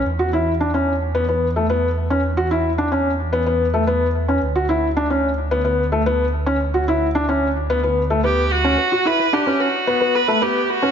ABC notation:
X:1
M:4/4
L:1/16
Q:1/4=110
K:Bm
V:1 name="Synth arpeggio sound"
z16 | z16 | z16 | z16 |
B z b B f B B z b B f B B z b B |]
V:2 name="Viola"
z16 | z16 | z16 | z12 G2 F2- |
F2 B2 G2 F4 B2 G2 F2 |]
V:3 name="Felt piano"
z F E2 D C2 z B, B,2 A, B,2 z C | z F E2 D C2 z B, B,2 A, B,2 z C | z F E2 D C2 z B, B,2 A, B,2 z C | z F E2 D C2 z B, B,2 A, B,2 z C |
z F E2 D C2 z B, B,2 A, B,2 z C |]
V:4 name="Detuned saw bass" clef=bass
E,,16- | E,,16 | D,,16- | D,,16 |
z16 |]